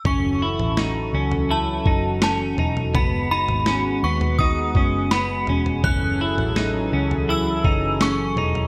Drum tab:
SD |----o-------o---|----o-------o---|----o-------o---|
FT |o--o---o------oo|o--o---o------oo|o--o---o------oo|
BD |o---------o-----|o-------o-o-----|o---------o-----|